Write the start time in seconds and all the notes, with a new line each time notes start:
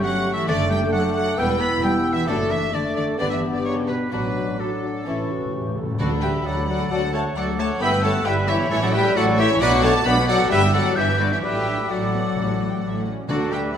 Already playing: A3 C#4 G4 C#6
0.03 F#3 F#5
0.33 E3 E5
0.47 F#1 D3 A3 D4 A4 D5 D6
0.70 G3 G5
0.92 F#3 A3 F#5 D6
1.15 F#3 F#5
1.37 E1 G3 B3 E4 B4 G5 E6
1.60 B3 B5
1.83 G3 B3 G4 G5 E6
2.13 E3 E5
2.27 F#1 A2 A3 D4 F#4 A4 D6
2.51 E3 E5
2.72 D3 A3 D4 A4 D5 D6
2.95 D3 D5
3.17 G1 D3 B3 D4 G4 B4 D5 D6
3.29 E3 E5
3.53 D3 D5
3.64 C#3 C#5
3.88 B2 B4
4.11 A1 B2 F#3 D4 F#4 B4 D6
4.59 A2 F#3 D4 F#4 A4 D6
4.84 D4
5.06 A1 A2 E3 C#4 E4 C#6
5.15 A2
5.23 A2
5.30 F#4
5.38 A2
5.46 A2
5.53 A2 G4
5.61 A2
5.68 A2
5.76 A2 A4
5.83 A2
5.91 A2
5.99 D2 D3 F#3 D4 F#4 A4 D5 B5
6.13 A3 A4
6.22 F#3 G3 F#4 G4 B4 E5 G5
6.35 A3 A4
6.45 D2 F#3 F#4 A4 D5 F#5
6.57 A3 A4
6.67 F#3 F#4 A4 D5 F#5
6.80 A3 A4
6.90 D2 F#3 F#4 A4 D5 F#5 A5
7.02 A3 A4
7.13 F#3 A3 F#4 A4 C#5 F#5 A5
7.25 A3 A4
7.36 D2 F#3 F#4 A4 D5 F#5 D6
7.48 A3 A4
7.58 F#3 A3 F#4 A4 C#5 F#5 A5
7.70 A3 A4
7.80 G1 G2 G3 B3 E4 B4 E5 G5 B5 E6
7.92 B3 G4
8.02 G3 A3 E4 A4 C#5 F#5 A5
8.14 B3 G4
8.25 G1 G2 G3 E4 G4 B4 E5 G5 B5
8.36 B3 G4
8.47 E3 G3 E4 G4 C#5 E5
8.58 B3 G4
8.70 A1 A2 E3 A3 E4 A4 C#5 E5
8.81 F#3 C#4 F#4 A4 D5 F#5
8.92 G3 A3 E4 G4 B4 E5 G5
9.04 C#4 A4
9.15 A1 A2 F#3 A3 E4 F#4 A4 D5 F#5 C#6
9.26 C#4 A4
9.38 E3 A3 E4 G4 C#5 E5
9.50 C#4 A4
9.60 B1 B2 F#3 D4 F#4 B4 D5 F#5 D6
9.73 B3 F#4
9.82 F#3 A3 D4 A4 C#5 F#5 A5
9.94 B3 F#4
10.05 B1 B2 F#3 B3 D4 B4 D5 F#5 B5 D6
10.17 B3 F#4
10.27 F#3 D4 F#4 A4 D5 F#5
10.39 B3 F#4
10.50 G1 G2 G3 D4 G4 B4 E5 G5 E6
10.62 B3 E4
10.73 F#3 G3 D4 F#4 A4 D5 F#5
10.85 B3 E4
10.96 G1 G2 E3 G3 D4 E4 G4 B4 E5 G6
11.08 B3 E4
11.19 D3 G3 D4 F#4 B4 D5
11.31 E3 B3 E4 G4 C#5 E5
11.42 A1 A2 F#3 G3 D4 G4 B4 E5 G5 D6
11.54 A3 F#4
11.66 F#3 D4
11.78 A3 F#4
11.89 A1 A2 F#3 F#4 A4 D5 F#5
12.12 B3
12.36 A1 A2 A3
12.60 A3
12.70 G5
12.79 A2 A3 F#5
12.83 A1
12.88 E5
12.97 F#5
13.07 C#4
13.29 D2 D3 A3 D4 F#4 A4 D5 D6
13.51 G3 G4 B4 E5 G5
13.74 F#5 B5